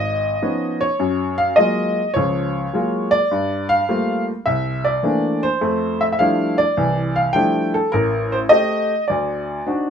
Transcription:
0.00 0.34 G#1 medium
0.00 0.84 D#5 medium
0.42 0.83 F3 soft
0.42 0.84 B3 soft
0.42 0.84 C#4 soft
0.42 0.84 D#4 medium
0.81 1.35 C#5 medium
0.99 1.50 F#2 medium
1.38 1.57 F5 medium
1.56 1.99 F#3 medium
1.56 1.99 G#3 soft
1.56 1.99 A#3 soft
1.56 1.99 F4 medium
1.56 2.10 D#5 medium
2.14 2.66 C#2 medium
2.14 2.65 F3 medium
2.14 3.08 C#5 medium
2.73 3.14 F#3 soft
2.73 3.15 G#3 soft
2.73 3.15 A#3 soft
2.73 3.15 F4 medium
3.11 3.65 D5 loud
3.31 3.81 G2 medium
3.69 4.23 F5 loud
3.89 4.30 G3 medium
3.89 4.30 A3 soft
3.89 4.30 A#3 medium
3.89 4.30 C4 soft
3.89 4.30 F4 medium
4.46 4.96 C2 medium
4.46 4.86 E5 medium
4.85 5.44 D5 medium
5.03 5.45 E3 medium
5.03 5.45 A3 soft
5.03 5.45 A#3 soft
5.03 5.45 C4 soft
5.03 5.45 D4 medium
5.43 6.02 C5 medium
5.61 6.11 F2 medium
5.61 6.11 A3 medium
6.01 6.06 E5 medium
6.12 6.18 E5 medium
6.19 6.61 F3 medium
6.19 6.61 G3 medium
6.19 6.61 A3 soft
6.19 6.61 D4 soft
6.19 6.61 E4 medium
6.19 6.56 F5 medium
6.58 7.18 D5 medium
6.77 7.27 C2 medium
6.77 7.27 E3 medium
7.16 7.34 F5 medium
7.33 7.76 F3 medium
7.33 7.76 G3 soft
7.33 7.76 A3 medium
7.33 7.76 D4 soft
7.33 7.77 E4 medium
7.33 7.74 G5 loud
7.74 7.92 A4 medium
7.92 8.43 A1 medium
7.92 8.33 A#4 medium
8.32 8.37 C5 medium
8.49 8.92 A3 medium
8.49 8.92 C4 soft
8.49 8.92 G4 medium
8.49 9.03 D#5 medium
9.08 9.59 D2 medium
9.08 9.90 D5 medium
9.67 9.90 C4 soft
9.67 9.90 D4 soft
9.67 9.90 D#4 soft
9.67 9.90 F#4 medium

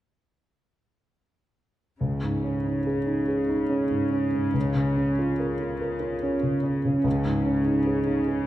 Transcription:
2.00 4.52 C#2 soft
2.00 7.01 C#3 soft
2.23 2.56 G#2 soft
2.43 2.77 C#4 soft
2.65 2.98 D#4 soft
2.87 3.20 G#4 soft
3.06 3.40 D#4 soft
3.28 3.62 G#4 soft
3.49 3.83 D#4 soft
3.70 4.04 C#4 soft
3.90 4.25 G#2 soft
4.11 4.46 C#4 soft
4.33 4.55 G#2 soft
4.54 7.01 C#2 soft
4.75 5.10 C#3 soft
4.97 5.31 C#4 soft
5.19 5.52 F4 soft
5.40 5.73 A#4 soft
5.61 5.94 F4 soft
5.81 6.14 A#4 soft
6.00 6.34 F4 soft
6.23 6.56 C#4 soft
6.43 6.76 C#3 soft
6.63 6.97 C#4 soft
6.85 7.06 C#3 soft
7.04 8.47 C#2 soft
7.04 8.47 C#3 soft
7.25 7.58 G#2 soft
7.46 7.79 C#4 soft
7.66 8.00 D#4 soft
7.87 8.21 G#4 soft
8.06 8.41 D#4 soft
8.28 8.47 G#4 soft

